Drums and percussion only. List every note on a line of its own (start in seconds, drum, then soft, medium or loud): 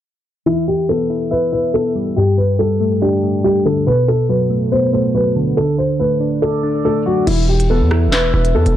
7.27 closed hi-hat medium
7.27 crash loud
7.60 closed hi-hat medium
7.91 cross-stick loud
8.12 snare loud
8.12 clap loud
8.12 closed hi-hat medium
8.45 closed hi-hat medium
8.66 closed hi-hat medium